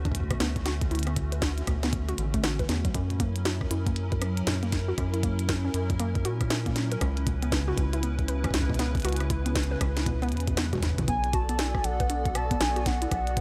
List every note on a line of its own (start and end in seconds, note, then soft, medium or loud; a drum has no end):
0.00 0.36 D2 medium
0.00 2.91 D3 medium
0.00 2.91 A3 medium
0.00 11.04 C#4 medium
0.00 2.91 F#4 medium
0.05 0.12 D4 medium
0.05 kick loud
0.05 kick medium
0.05 closed hi-hat soft
0.12 kick medium
0.12 closed hi-hat medium
0.15 kick medium
0.20 kick soft
0.23 kick soft
0.31 0.38 B2 medium
0.31 kick loud
0.31 cross-stick medium
0.31 closed hi-hat medium
0.40 0.87 D2 medium
0.40 0.52 B3 loud
0.40 snare loud
0.40 closed hi-hat medium
0.56 kick loud
0.56 closed hi-hat soft
0.66 0.73 F#4 loud
0.66 snare medium
0.66 closed hi-hat medium
0.81 kick loud
0.81 closed hi-hat medium
0.91 1.63 D2 loud
0.91 0.98 E4 medium
0.91 closed hi-hat soft
0.95 closed hi-hat soft
0.99 closed hi-hat medium
1.03 1.16 B3 medium
1.03 cross-stick soft
1.03 closed hi-hat medium
1.07 closed hi-hat soft
1.16 kick loud
1.16 closed hi-hat medium
1.32 1.37 B4 medium
1.32 closed hi-hat soft
1.42 1.54 D4 medium
1.42 kick loud
1.42 snare loud
1.42 closed hi-hat medium
1.58 closed hi-hat soft
1.67 2.14 D2 medium
1.67 1.79 B2 medium
1.67 kick loud
1.67 cross-stick medium
1.67 closed hi-hat medium
1.83 1.90 B3 loud
1.83 snare medium
1.83 closed hi-hat soft
1.93 kick loud
1.93 closed hi-hat medium
2.09 2.13 F#4 loud
2.09 closed hi-hat soft
2.18 2.65 A1 medium
2.18 closed hi-hat medium
2.34 2.43 A3 loud
2.34 kick loud
2.34 closed hi-hat medium
2.44 2.59 F#4 loud
2.44 cross-stick medium
2.44 snare loud
2.44 closed hi-hat medium
2.59 2.67 B4 medium
2.59 kick loud
2.59 closed hi-hat soft
2.69 2.89 E2 loud
2.69 2.84 B3 medium
2.69 snare medium
2.69 closed hi-hat medium
2.85 2.92 F#3 medium
2.85 kick loud
2.85 closed hi-hat medium
2.95 3.66 F#2 loud
2.95 6.97 F#3 medium
2.95 6.97 E4 medium
2.95 6.97 A#4 medium
2.95 kick loud
2.95 closed hi-hat medium
3.10 3.17 A#2 medium
3.10 closed hi-hat soft
3.20 3.32 A#3 loud
3.20 kick loud
3.20 closed hi-hat medium
3.36 closed hi-hat soft
3.45 3.52 F#4 loud
3.45 snare loud
3.45 closed hi-hat medium
3.61 kick loud
3.61 cross-stick soft
3.71 4.42 F#2 medium
3.71 3.78 E4 medium
3.71 closed hi-hat medium
3.87 3.96 A#3 medium
3.87 kick loud
3.87 closed hi-hat soft
3.96 closed hi-hat medium
4.12 4.16 A#4 medium
4.12 kick loud
4.12 closed hi-hat soft
4.22 4.33 C#4 medium
4.22 cross-stick medium
4.22 closed hi-hat medium
4.37 closed hi-hat medium
4.47 4.93 F#2 medium
4.47 4.59 A#2 medium
4.47 snare loud
4.47 closed hi-hat medium
4.63 4.70 A#3 loud
4.63 closed hi-hat soft
4.72 kick loud
4.72 snare medium
4.72 closed hi-hat medium
4.88 4.93 F#4 loud
4.98 5.70 F#2 loud
4.98 kick loud
4.98 cross-stick soft
4.98 closed hi-hat medium
5.14 5.18 E4 medium
5.14 closed hi-hat soft
5.23 5.38 A#3 medium
5.23 kick loud
5.23 closed hi-hat medium
5.39 closed hi-hat soft
5.49 5.56 A#4 medium
5.49 kick loud
5.49 snare loud
5.49 closed hi-hat medium
5.65 5.72 C#4 medium
5.74 6.26 F#2 medium
5.74 closed hi-hat medium
5.90 5.97 A#2 medium
5.90 kick loud
5.90 closed hi-hat soft
6.00 6.11 A#3 loud
6.00 closed hi-hat medium
6.15 kick loud
6.15 closed hi-hat soft
6.25 6.97 A#2 medium
6.25 6.32 F#4 loud
6.25 closed hi-hat medium
6.41 kick loud
6.41 cross-stick medium
6.41 closed hi-hat soft
6.50 6.57 E4 medium
6.50 snare loud
6.50 closed hi-hat medium
6.66 6.75 A#3 medium
6.66 kick loud
6.66 closed hi-hat soft
6.76 snare medium
6.76 closed hi-hat medium
6.92 6.96 A#4 medium
6.92 closed hi-hat soft
7.01 7.73 C#2 loud
7.01 11.04 C#3 medium
7.01 7.13 C#4 medium
7.01 11.04 E4 medium
7.01 11.04 B4 medium
7.01 kick loud
7.01 cross-stick medium
7.01 closed hi-hat medium
7.17 closed hi-hat soft
7.27 7.38 B2 medium
7.27 kick loud
7.27 closed hi-hat medium
7.42 7.50 B3 loud
7.42 closed hi-hat medium
7.52 kick loud
7.52 snare loud
7.52 closed hi-hat medium
7.68 7.72 F#4 loud
7.78 8.49 C#2 medium
7.78 kick loud
7.78 closed hi-hat medium
7.93 7.98 E4 medium
7.93 closed hi-hat soft
8.03 8.18 B3 medium
8.03 closed hi-hat medium
8.19 kick loud
8.19 closed hi-hat soft
8.28 8.35 B4 medium
8.28 closed hi-hat medium
8.44 8.51 C#4 medium
8.44 kick loud
8.44 kick medium
8.44 cross-stick medium
8.44 closed hi-hat medium
8.51 kick medium
8.51 snare loud
8.51 closed hi-hat medium
8.54 9.00 C#2 medium
8.54 kick medium
8.59 kick soft
8.62 kick soft
8.70 8.77 B2 medium
8.70 kick loud
8.74 closed hi-hat soft
8.79 8.91 B3 loud
8.79 snare medium
8.79 closed hi-hat medium
8.95 kick loud
8.95 closed hi-hat soft
8.97 closed hi-hat soft
9.00 closed hi-hat soft
9.02 closed hi-hat soft
9.05 9.76 C#2 medium
9.05 9.12 F#4 loud
9.05 closed hi-hat medium
9.09 closed hi-hat soft
9.13 closed hi-hat soft
9.16 cross-stick medium
9.16 closed hi-hat soft
9.20 closed hi-hat soft
9.30 9.37 E4 medium
9.30 kick loud
9.30 closed hi-hat medium
9.46 9.55 B3 medium
9.46 closed hi-hat medium
9.55 kick loud
9.55 snare loud
9.55 closed hi-hat medium
9.63 closed hi-hat soft
9.71 9.76 B4 medium
9.81 10.33 C#2 medium
9.81 9.93 C#4 medium
9.81 kick loud
9.81 cross-stick medium
9.81 closed hi-hat medium
9.97 snare medium
9.97 closed hi-hat medium
10.06 10.18 B2 medium
10.06 kick loud
10.06 closed hi-hat medium
10.22 10.29 B3 loud
10.22 closed hi-hat soft
10.29 11.03 E2 medium
10.29 closed hi-hat soft
10.32 closed hi-hat soft
10.37 closed hi-hat soft
10.40 closed hi-hat soft
10.48 10.57 B2 medium
10.48 kick loud
10.48 closed hi-hat medium
10.57 10.69 B3 medium
10.57 cross-stick medium
10.57 snare loud
10.57 closed hi-hat medium
10.57 high tom soft
10.65 high tom soft
10.73 10.82 F#4 medium
10.73 kick loud
10.73 closed hi-hat soft
10.73 high tom medium
10.75 kick medium
10.75 high tom soft
10.78 kick medium
10.80 kick medium
10.80 snare medium
10.80 closed hi-hat medium
10.83 10.94 E4 medium
10.83 kick soft
10.87 kick soft
10.90 kick soft
10.94 kick soft
10.94 closed hi-hat medium
10.94 mid tom medium
10.98 11.08 B2 loud
10.98 kick loud
11.08 11.80 B1 loud
11.08 11.20 B3 loud
11.08 13.41 B3 medium
11.08 13.41 F#4 medium
11.08 13.09 A4 medium
11.08 13.41 D5 medium
11.08 11.35 G#5 medium
11.08 kick loud
11.08 closed hi-hat medium
11.24 closed hi-hat soft
11.33 11.40 F#4 loud
11.33 11.60 A5 medium
11.33 kick loud
11.33 closed hi-hat medium
11.49 11.58 B3 medium
11.49 closed hi-hat medium
11.59 11.66 E4 medium
11.59 11.86 G#5 medium
11.59 snare loud
11.59 closed hi-hat medium
11.75 kick loud
11.75 cross-stick medium
11.84 12.56 B1 medium
11.84 12.37 F#5 medium
11.84 closed hi-hat medium
12.00 12.04 B4 medium
12.00 kick loud
12.00 closed hi-hat medium
12.10 12.21 D4 medium
12.10 closed hi-hat medium
12.26 kick loud
12.26 closed hi-hat soft
12.35 12.47 B2 medium
12.35 12.62 A5 loud
12.35 cross-stick medium
12.35 closed hi-hat medium
12.51 12.58 B3 loud
12.51 kick loud
12.51 closed hi-hat medium
12.61 13.07 B1 medium
12.61 12.88 G#5 medium
12.61 snare loud
12.61 closed hi-hat medium
12.76 12.81 F#4 loud
12.76 closed hi-hat soft
12.86 13.01 B3 medium
12.86 13.11 F#5 medium
12.86 kick loud
12.86 snare medium
12.86 closed hi-hat medium
13.02 13.06 E4 medium
13.02 closed hi-hat medium
13.11 13.41 B1 loud
13.11 13.41 B4 medium
13.11 13.41 F#5 loud
13.11 kick loud
13.11 cross-stick medium
13.11 closed hi-hat medium
13.27 closed hi-hat soft
13.37 13.41 B4 medium
13.37 kick loud
13.37 closed hi-hat medium